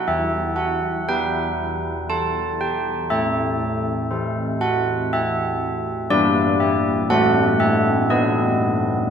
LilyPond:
\new Staff \with { instrumentName = "Church bells" } { \time 3/4 \key e \minor \tempo 4 = 60 << { e''8 fis''8 g''4 a''8 g''8 | e''4. fis''8 e''4 | d''8 e''8 fis''8 e''8 dis''4 | } \\ { e4 <e' b'>2 | a4 <e' c''>2 | <g e' b'>4 <a a' c''>4 <b a' b'>4 | } >> }